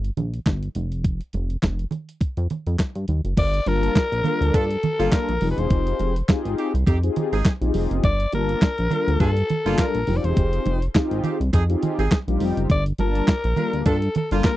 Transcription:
Already playing: G1
0.04 closed hi-hat
0.17 A#1, closed hi-hat, low conga
0.34 closed hi-hat
0.46 G1, kick, snare, clap, closed hi-hat, high conga
0.63 closed hi-hat
0.75 F1, closed hi-hat, high conga
0.92 closed hi-hat
1.04 kick, closed hi-hat
1.21 closed hi-hat
1.33 F1, closed hi-hat, muted conga
1.50 closed hi-hat
1.63 F1, kick, snare, clap, closed hi-hat, high conga
1.79 closed hi-hat
1.91 closed hi-hat, low conga
2.09 closed hi-hat
2.21 kick, closed hi-hat, muted conga
2.37 F2, closed hi-hat
2.50 closed hi-hat, low conga
2.67 F2, closed hi-hat
2.79 kick, snare, clap, closed hi-hat, high conga
2.95 G2, closed hi-hat
3.08 D#2, closed hi-hat, high conga
3.25 F#1, closed hi-hat
3.37 G1 D5, kick, closed hi-hat, crash, muted conga
3.54 closed hi-hat
3.66 G1 G3 A#3 D4 F4 A#4 A5, closed hi-hat, muted conga
3.83 closed hi-hat
3.96 kick, snare, clap, closed hi-hat, high conga
4.12 A#1, closed hi-hat
4.24 G3 A#3 D4 F4 A4 A#4, closed hi-hat, low conga
4.41 D2, closed hi-hat
4.54 G2 D4 F4 A4, kick, closed hi-hat, muted conga
4.70 closed hi-hat
4.83 closed hi-hat, low conga
4.99 G1 G3 A#3 D4 F4 A4, closed hi-hat
5.12 A#4, kick, snare, clap, closed hi-hat, high conga
5.29 A#1, closed hi-hat
5.41 F1 C4 D#4 F4 G4 G#4, open hi-hat, high conga
5.51 B4
5.58 E1 C5, closed hi-hat
5.70 F1, kick, closed hi-hat, muted conga
5.87 closed hi-hat
5.99 F1, closed hi-hat, muted conga
6.16 closed hi-hat
6.28 C4 D#4 F4 G4 G#4, kick, snare, clap, closed hi-hat, high conga
6.45 G#1, closed hi-hat
6.58 C4 D#4 G4, closed hi-hat
6.74 C2, closed hi-hat
6.86 F2 C4 D#4 G4, kick, closed hi-hat, muted conga
7.03 C4 D#4 F4 G4 G#4, closed hi-hat
7.16 closed hi-hat, low conga
7.32 G#1 C4 D#4 G#4, closed hi-hat
7.45 kick, snare, clap, closed hi-hat, high conga
7.61 A#1 C4 D#4 F4 G4 G#4, closed hi-hat
7.74 F1, open hi-hat, high conga
7.91 F#1, closed hi-hat
8.04 G1 D5, kick, closed hi-hat
8.20 closed hi-hat
8.32 G1 G3 A#3 D4 F4 A#4 A5, closed hi-hat, muted conga
8.49 closed hi-hat
8.62 kick, snare, clap, closed hi-hat, high conga
8.78 A#1, closed hi-hat
8.90 G3 A#3 D4 F4 A4 A#4, closed hi-hat, low conga
9.08 D2, closed hi-hat
9.20 G2 D4 F4 A4, kick, closed hi-hat, muted conga
9.37 closed hi-hat
9.50 closed hi-hat, low conga
9.65 G1 G3 A#3 D4 F4 A4, closed hi-hat
9.78 A#4, kick, snare, clap, closed hi-hat, high conga
9.95 A#1, closed hi-hat
10.07 F1 C4 D#4 F4 G4 G#4, open hi-hat, high conga
10.17 D5
10.24 E1 C5, closed hi-hat
10.36 F1, kick, closed hi-hat, muted conga
10.53 closed hi-hat
10.66 F1, closed hi-hat, muted conga
10.82 closed hi-hat
10.95 C4 D#4 F4 G4 G#4, kick, snare, clap, closed hi-hat, high conga
11.11 G#1, closed hi-hat
11.24 C4 D#4 G4, closed hi-hat, low conga
11.40 C2, closed hi-hat
11.53 F2 C4 D#4 G#4, kick, closed hi-hat, muted conga
11.69 C4 D#4 F4 G4 G#4, closed hi-hat
11.83 closed hi-hat, low conga
11.98 G#1 C4 D#4 G#4, closed hi-hat
12.11 kick, snare, clap, closed hi-hat, high conga
12.28 A#1 G3 C4 D#4 F4 G4, closed hi-hat
12.40 F1, open hi-hat, high conga
12.57 F#1, closed hi-hat
12.70 G1 D5, kick, closed hi-hat
12.86 closed hi-hat
12.98 G1 G3 A#3 D4 F4 A#4 A5, closed hi-hat, muted conga
13.15 closed hi-hat
13.28 kick, snare, clap, closed hi-hat, high conga
13.44 A#1, closed hi-hat
13.56 G3 A#3 D4 F4 A4 A#4, closed hi-hat, low conga
13.73 D2, closed hi-hat
13.86 G2 D4 F4 A4, kick, closed hi-hat, muted conga
14.02 closed hi-hat
14.15 A4, closed hi-hat, low conga
14.31 G1 G3 A#3 D4 F4 A4, closed hi-hat
14.44 A#4, kick, snare, clap, closed hi-hat, high conga

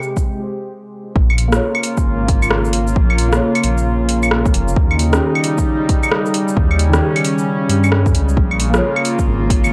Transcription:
Already playing: C3 G#3 G4 C5
0.03 shaker
0.17 kick, shaker
1.15 A#1 C#3 A#3 F4, kick
1.30 claves
1.38 open hi-hat
1.48 A#3
1.52 F4 C#5, cross-stick, shaker
1.75 claves
1.83 open hi-hat, shaker
1.97 kick, shaker
2.06 G#1
2.28 kick, open hi-hat
2.42 claves, shaker
2.51 cross-stick
2.65 shaker
2.73 open hi-hat
2.87 shaker
2.96 A#1, kick
3.10 claves
3.18 open hi-hat
3.29 A#3
3.33 F4, cross-stick, shaker
3.37 C#5
3.55 open hi-hat, claves
3.64 A#1, open hi-hat, shaker
3.78 shaker
4.09 open hi-hat
4.23 claves, shaker
4.31 cross-stick
4.46 kick, shaker
4.54 F1, open hi-hat
4.68 shaker
4.76 D#2 G3 D#4, kick
4.91 claves
4.99 open hi-hat
5.09 D#3, cross-stick, shaker
5.13 C#4
5.17 G4
5.35 claves
5.44 open hi-hat, shaker
5.58 kick, shaker
5.89 kick, open hi-hat
6.03 claves, shaker
6.12 cross-stick
6.26 shaker
6.34 open hi-hat
6.48 shaker
6.56 D#2 C#4, kick
6.71 claves
6.79 open hi-hat
6.89 D#3 C#4
6.93 G4, cross-stick, shaker
7.16 open hi-hat, claves
7.25 open hi-hat, shaker
7.38 shaker
7.70 G2, open hi-hat
7.84 claves, shaker
7.92 cross-stick
8.06 kick, shaker
8.15 C#2, open hi-hat
8.29 shaker
8.37 A#1 A#3 F4, kick
8.51 claves
8.60 open hi-hat
8.70 A#3, cross-stick, shaker
8.74 F4 C#5
8.96 claves
9.05 open hi-hat, shaker
9.19 kick, shaker
9.27 G#1
9.50 kick, open hi-hat
9.64 claves, shaker

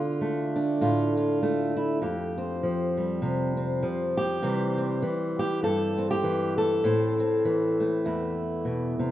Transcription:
Already playing: D3 A3 F4
0.21 A3
0.56 D4
0.81 A2 F4
1.17 F4
1.43 A3
1.77 E4
2.02 F2 G4
2.38 C4
2.63 F3
2.97 G3
3.22 C3
3.57 C4
3.83 F3
4.17 G4
4.42 C3 E3 G3 C4
4.78 C4
5.02 E3
5.39 G4
5.63 G2 A4
5.98 C4
6.11 G4
6.24 E3
6.58 A4
6.84 A2 C4
7.20 C4
7.45 E3
7.80 A3
8.05 E2 E4
8.65 B2
8.99 C3

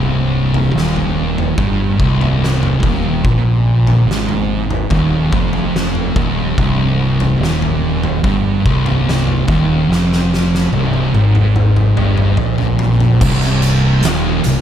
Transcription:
Already playing: C1 C2
0.54 floor tom
0.75 D#1 D#2, snare
0.96 floor tom
1.38 mid tom
1.58 G1 G2, kick, floor tom
2.00 C1 C2, kick
2.21 floor tom
2.44 snare
2.63 mid tom
2.83 D#1 D#2, kick, floor tom
3.25 A#1 A#2, kick, floor tom
3.87 floor tom
4.08 G#1 G#2, snare
4.29 floor tom
4.71 mid tom
4.90 D#1 D#2, kick, floor tom
5.33 F1 F2, kick
5.53 floor tom
5.76 snare
5.95 mid tom
6.16 D#1 D#2, kick, floor tom
6.58 C1 C2, kick, floor tom
7.20 floor tom
7.40 D#1 D#2, snare
7.62 floor tom
8.03 mid tom
8.23 G1 G2, kick, floor tom
8.65 C1 C2, kick
8.86 floor tom
9.09 snare
9.27 mid tom
9.48 D#1 D#2, kick, floor tom
9.89 F1 F2, snare
10.13 snare
10.34 snare
10.55 snare
10.72 C1 C2, high tom
10.93 high tom
11.14 G#1 G#2, high tom
11.35 mid tom
11.56 mid tom
11.77 mid tom
11.97 G1 G2, mid tom
12.17 mid tom
12.37 A#1 A#2, mid tom
12.58 floor tom
12.79 floor tom
13.00 floor tom
13.21 C1 C2, kick, crash
13.42 snare, closed hi-hat
13.62 closed hi-hat
14.03 D#1 D#2, snare, closed hi-hat
14.44 C1 C2, closed hi-hat

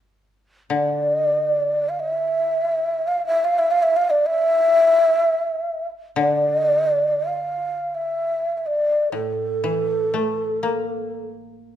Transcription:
0.70 D3
0.75 D5
1.89 F5
2.00 E5
3.08 F5
3.26 E5
3.44 F5
3.59 E5
3.71 F5
3.83 E5
3.97 F5
4.10 D5
4.26 E5
6.16 D3 D5
7.28 F5
7.95 E5
8.57 E5
8.67 D5
9.12 A2 A4
9.64 E3
10.14 A3
10.63 A#3

